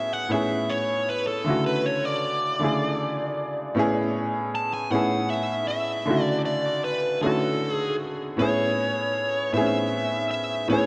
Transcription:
Already playing: A2 B3 C#4 E4 G#4 E5
0.13 F#5
0.29 A2 B3 C#4 E4 E5
0.34 G#4
0.70 C#5
1.09 B4
1.27 A4
1.44 C#3 D3 A3 E4
1.50 F#4
1.66 B4
1.86 C#5
2.05 D5
2.59 C#3 D3 A3 E4
2.64 G#4
3.75 A2 B3 C#4 E4
3.79 G#4
4.55 A5
4.74 G#5
4.90 A2 B3 C#4 E4 F#5
4.95 G#4
5.30 E5
5.68 E5
6.06 C#3 D3 A3 E4
6.10 F#4
6.22 D5
6.45 D5
6.84 B4
7.21 D3 A3 C#4 E4 A4
7.26 F#4
7.74 G#4
8.37 A2 B3 C#4 E4 C#5
8.42 G#4
9.52 A2 B3 C4 E4 E5
9.57 G#4
9.61 C#4
10.31 E5
10.67 A2 B3 C#4 E4 C#5
10.73 G#4

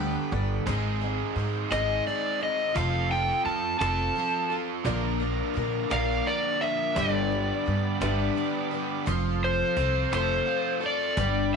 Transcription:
Already playing: D2 G2 D3 G3 B3 D4 G4 B5
0.00 A4
0.31 G1 G3 B3 D4 A4, cajon slap
0.66 G#1 G#2 D#3 G#3 C4 D#4 G#4, cajon bass
1.01 G#3 C4 D#4 G#4, cajon slap
1.36 G#2 G#3 C4 D#4 G#4, cajon slap
1.70 G#1 G#2 D#3 G#3 C4 D#4 G#4 D#5, cajon slap
2.06 G#3 C4 D#4 G#4 D5, cajon slap
2.40 G#3 C4 D#4 G#4 D#5, cajon slap
2.75 F1 F3 C4 F4 A4 F5, cajon bass
3.10 C4 F4 A4 G5, cajon slap
3.45 F2 F3 C4 F4 A5, cajon slap
3.49 A4
3.79 F1 F3 C4 F4 A4 A5, cajon bass, cajon slap
4.15 F3 C4 F4 A4, cajon slap
4.50 C4 F4 A4, cajon slap
4.84 A#1 A#2 D3 F3 A#3 D4 F4 A#4 D5 A#5, cajon bass
5.20 F3 A#3 D4 A#4, cajon slap
5.54 A#2 F3 A#3 D4 A#4, cajon slap
5.90 A#1 A#2 D3 F3 A#3 D4 F4 A#4 D5 F5, cajon slap
6.25 F3 A#3 D4 D5, cajon slap
6.29 A#4
6.61 F3 A#3 D4 A#4 E5, cajon slap
6.95 G1 G2 D3 G3 B3 D4 G4 B4 D5 B5, cajon bass
7.31 G3 B3 D4 B4, cajon slap
7.66 G2 G3 B3 D4 B4, cajon slap
8.01 G1 G2 D3 G3 B3 D4 G4 B4 E5, cajon bass, cajon slap
8.35 G3 B3 D4 B4, cajon slap
8.71 G3 B3 D4 B4, cajon slap
9.06 F1 F3 C4 F4 A4 F5 C6, cajon bass
9.42 C5, cajon slap
9.76 C2 F3 C4 F4 A4, cajon bass
10.12 F1 F3 A3 C4 F4 A4 C5, cajon slap
10.47 F4, cajon slap
10.81 C4 F4 A4, cajon slap
10.86 D5
11.17 G1 G2 D3 G3 B3 D4 G4 B4 D5 B5, cajon bass
11.53 cajon slap

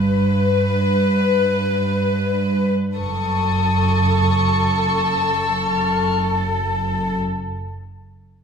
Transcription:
Already playing: G1 G2 B4
2.96 F#1 F#2 A4 C#6 D#6
4.79 E6
5.79 F6

